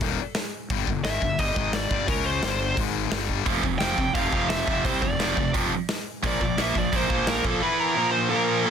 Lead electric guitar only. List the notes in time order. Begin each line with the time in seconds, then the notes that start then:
1.04 E5
1.39 D#5
1.75 D5
2.08 A#4
2.26 C5
3.79 G5
4.15 F5
4.49 E5
4.85 C5
5.02 D5
6.26 D5
6.62 E5
6.79 D5
6.96 C5
7.29 A#4
7.46 A4
7.62 B4
7.80 A#4
8.12 C5
8.30 A#4
8.66 A4